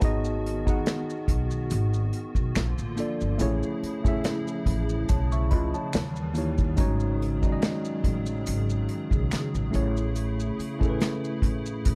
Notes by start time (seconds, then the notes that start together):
Already playing: F#4 C#5 A5
0.00 G#1 D#3 B3 D#4 F#4 G#4, kick, closed hi-hat, maracas
0.05 D#5
0.25 maracas
0.46 closed hi-hat
0.65 B3 D#4 F#4 G#4, kick, maracas
0.70 F#5
0.86 finger snap, snare, closed hi-hat, maracas
1.10 maracas
1.28 B1, kick, closed hi-hat
1.51 maracas
1.70 G#1, closed hi-hat, maracas
1.94 maracas
2.13 closed hi-hat
2.35 B1, kick, maracas
2.55 A#1 D3 F3 A#3 F4, finger snap, snare, closed hi-hat, maracas
2.78 A1, maracas
2.96 A#3 D4 F4 A4, closed hi-hat, maracas
3.00 D5
3.21 G1, maracas
3.38 A1 C#3 A3 C#4 E4 G#4, closed hi-hat, maracas
3.42 C#5
3.63 maracas
3.83 muted upright bass stroke, closed hi-hat
4.03 A2 A3 C#4 E4 G#4, kick, maracas
4.08 E5
4.24 finger snap, snare, closed hi-hat, maracas
4.48 maracas
4.66 A1, kick, closed hi-hat
4.89 maracas
5.09 B1 C#5 A5, kick, closed hi-hat, maracas
5.32 E5 C#6, maracas
5.51 C#2 D#5 B5, kick, closed hi-hat
5.74 C#5 A5, maracas
5.93 D#2 D#3 E3 G3, finger snap, snare, closed hi-hat, maracas
6.16 maracas
6.34 A#3 D#4 E4 G4, closed hi-hat, maracas
6.38 C#5
6.58 kick, maracas
6.76 G#1 F#3 G#3 C#4 D#4 F#4 G#4, kick, closed hi-hat, maracas
6.81 C#5
7.00 maracas
7.22 closed hi-hat
7.42 G#3 C#4 D#4 F#4, kick, maracas
7.46 D5
7.52 D#5
7.62 finger snap, snare, closed hi-hat, maracas
7.85 maracas
8.04 A1, kick, closed hi-hat
8.26 maracas
8.46 G#1, closed hi-hat, maracas
8.70 maracas
8.89 closed hi-hat
9.11 B1, kick, maracas
9.31 finger snap, muted upright bass stroke, snare, closed hi-hat, maracas
9.55 A1, maracas
9.71 A1 A3 C#4 E4 G#4, closed hi-hat, maracas
9.76 C#5
9.97 maracas
10.16 closed hi-hat, maracas
10.40 maracas
10.59 muted upright bass stroke, closed hi-hat, maracas
10.79 A2 A3 C#4 E4 G#4, kick, maracas
10.83 A4
10.90 B4
11.00 finger snap, snare, closed hi-hat, maracas
11.24 maracas
11.42 A2, kick, closed hi-hat
11.66 maracas
11.85 A1, kick, closed hi-hat, maracas